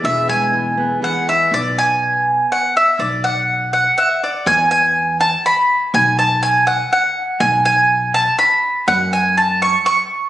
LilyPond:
<<
  \new Staff \with { instrumentName = "Mandolin" } { \time 3/4 \key e \mixolydian \tempo 4 = 122 e''8 gis''4. fis''8 e''8 | d''8 gis''4. fis''8 e''8 | d''8 fis''4 fis''8 <e'' fis''>8 d''8 | gis''8 gis''4 a''8 b''4 |
gis''8 a''8 gis''8 fis''8 fis''4 | gis''8 gis''4 a''8 b''4 | fis''8 gis''8 a''8 cis'''8 cis'''4 | }
  \new Staff \with { instrumentName = "Steel-string acoustic guitar" } { \time 3/4 \key e \mixolydian << { <b gis'>8 gis4 b8 gis'4 | r2. | r2. | r2. |
r2. | r2. | r2. | } \\ { e,4 e4 e4 | r2. | r2. | r2. |
r2. | r2. | r2. | } >> }
  \new Staff \with { instrumentName = "Upright bass" } { \clef bass \time 3/4 \key e \mixolydian e,,2 r4 | b,,2 r4 | b,,2 r4 | e,2 r4 |
b,,2 r4 | b,,2 r4 | fis,2 r4 | }
>>